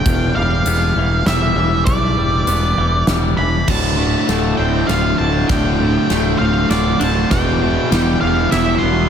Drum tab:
CC |------|------|x-----|------|
RD |------|------|--x-x-|x-x-xx|
HH |x-x-x-|x-x-x-|------|------|
SD |----o-|----o-|o-o-o-|o-o-o-|
BD |o-----|o-----|o-----|o-----|

CC |------|
RD |x-x-x-|
HH |------|
SD |o-o-o-|
BD |o-----|